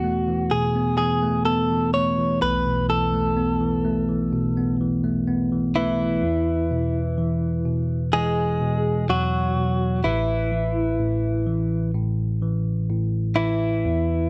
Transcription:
Already playing: E2 B2 E3 A3 B3 F#4
0.04 A3
0.28 E3
0.51 B2 G#4
0.75 B3
0.98 E3 G#4
1.22 A3
1.45 B3 A4
1.71 E3
1.94 A3 C#5
2.18 E3
2.42 B1 B4
2.67 B2
2.89 E3 A4
3.13 A3
3.37 B3
3.61 E3
3.85 A3
4.09 E3
4.33 B2
4.57 B3
4.81 E3
5.04 A3
5.28 B3
5.52 E3
5.76 E3 A3 E4
6.00 E3
6.23 E2
6.71 B2
7.18 E3
7.66 B2
8.13 E3 G#3 G#4
8.61 B2
9.09 E2 F#3 F#4
9.56 B2
10.04 A1 A2 E3 E4
10.52 E3
10.99 A2
11.47 E3
11.95 A2
12.42 E3
12.90 A2
13.36 E3 E4
13.85 E2

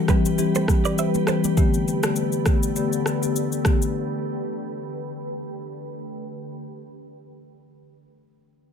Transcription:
Already playing: E3 G3 G4 B4
0.08 E3 G3 C4 G4 B4, kick, cross-stick, high conga, low conga, shaker
0.25 shaker
0.38 E3 G3 C4 G4, low conga, shaker
0.55 A4 C5, high conga, shaker
0.68 kick, cross-stick, high conga, shaker
0.84 E3 G3 C4 G4 B4 D5, shaker
0.98 C5 E5, shaker
1.14 high conga, shaker
1.27 E3 G3 C4 G4 A4 C5, cross-stick, low conga, shaker
1.44 high conga, shaker
1.57 D3 A3 B3 G4, kick, shaker
1.74 shaker
1.88 shaker
2.03 D3 A3 B3 G4, cross-stick, shaker
2.16 shaker
2.32 shaker
2.46 D3 A3 B3 G4, kick, cross-stick, shaker
2.63 shaker
2.76 D3 A3 B3 G4, shaker
2.93 shaker
3.06 cross-stick, shaker
3.22 D3 A3 B3 G4, shaker
3.36 shaker
3.52 shaker
3.65 D3 A3 B3 G4, kick, cross-stick, shaker
3.82 shaker

